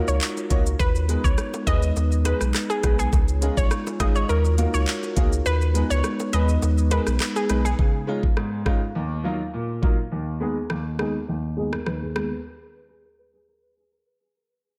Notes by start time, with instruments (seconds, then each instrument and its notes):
Already playing: glass harmonica D#4 F4 F#4 A#4
0.08 sub bass C#2, synth pluck C#5, shaker
0.21 clap, shaker
0.37 high bongo, shaker
0.50 sub bass C#2, grand piano A#3 D#4 F4 F#4 C#5, kick, closed hi-hat, low bongo, shaker
0.66 shaker
0.79 sub bass D#2, glass harmonica G#3 B3 B4, synth pluck B4, kick, high bongo, shaker
0.95 shaker
1.08 grand piano G#3 B3 D#4 G#4 B4, closed hi-hat, shaker
1.24 sub bass C#2, synth pluck C#5, kick, shaker
1.38 cross-stick, shaker
1.54 high bongo, shaker
1.66 sub bass D#2, grand piano G#3 B3 D#4 G#4 B4, synth pluck D#5, kick, closed hi-hat, high bongo, low bongo, shaker
1.82 shaker
1.96 sub bass D#2, high bongo, shaker
2.12 shaker
2.24 grand piano G#3 B3 D#4 G#4 B4, synth pluck B4, closed hi-hat, high bongo, shaker
2.41 sub bass B1, cross-stick, shaker
2.54 cross-stick, clap, shaker
2.70 synth pluck G#4, high bongo, shaker
2.83 sub bass B1, grand piano G#3 B3 D#4 G#4 B4, kick, cross-stick, closed hi-hat, low bongo, shaker
2.99 synth pluck G#4, shaker
3.13 sub bass C#2, glass harmonica G#3 D#4 F4 C#5, kick, high bongo, shaker
3.28 shaker
3.41 grand piano G#3 C#4 D#4 F4 G#4, closed hi-hat, shaker
3.57 sub bass A#1, synth pluck C#5, kick, shaker
3.71 cross-stick, shaker
3.87 high bongo, shaker
4.00 sub bass G#1, grand piano G#3 C#4 D#4 F4 G#4, synth pluck D#5, kick, cross-stick, closed hi-hat, high bongo, low bongo, shaker
4.15 synth pluck C#5, shaker
4.29 sub bass D#2, glass harmonica F#4 A#4, synth pluck A#4, high bongo, shaker
4.45 shaker
4.58 grand piano A#3 D#4 F4 F#4 A#4, closed hi-hat, high bongo, shaker
4.74 sub bass C#2, synth pluck C#5, shaker
4.88 clap, shaker
5.03 high bongo, shaker
5.16 sub bass C#2, grand piano A#3 D#4 F4 F#4 G#4, kick, closed hi-hat, low bongo, shaker
5.33 shaker
5.46 sub bass D#2, glass harmonica G#3 B3 D#4 B4, synth pluck B4, high bongo, shaker
5.61 shaker
5.74 grand piano G#3 B3 D#4 G#4 B4, closed hi-hat, shaker
5.90 sub bass C#2, synth pluck C#5, shaker
6.04 cross-stick, shaker
6.20 high bongo, shaker
6.32 sub bass D#2, grand piano G#3 B3 D#4 G#4 B4, synth pluck D#5, closed hi-hat, high bongo, low bongo, shaker
6.49 shaker
6.62 sub bass D#2, high bongo, shaker
6.78 shaker
6.90 grand piano G#3 B3 D#4 G#4 A#4, synth pluck B4, closed hi-hat, high bongo, shaker
7.07 sub bass B1, cross-stick, shaker
7.20 cross-stick, clap, shaker
7.36 synth pluck G#4, high bongo, shaker
7.49 sub bass B1, grand piano G#3 B3 D#4 G#4 B4, cross-stick, closed hi-hat, low bongo, shaker
7.65 synth pluck G#4, shaker
7.79 grand piano C#3, kick
8.07 grand piano G#3 C#4 D#4 F4
8.23 kick
8.37 grand piano G#2, cross-stick
8.65 grand piano G#3 C#4 D#4 F4, kick, cross-stick
8.95 grand piano D#2
9.24 grand piano F#3 A#3 D#4 F4
9.54 grand piano A#2
9.82 grand piano F#3 A#3 D#4 F4, kick
10.12 grand piano D#2
10.40 grand piano G#3 B3 D#4 G#4
10.70 grand piano D#2, cross-stick
10.99 grand piano G#3 B3 D#4 G#4, cross-stick
11.28 grand piano D#2
11.57 grand piano G#3 B3 D#4 G#4, nylon-string guitar G#4
11.73 nylon-string guitar A#4, cross-stick
11.86 grand piano D#2, nylon-string guitar B4, cross-stick
12.02 nylon-string guitar G#4
12.15 grand piano G#3 B3 D#4 G#4, cross-stick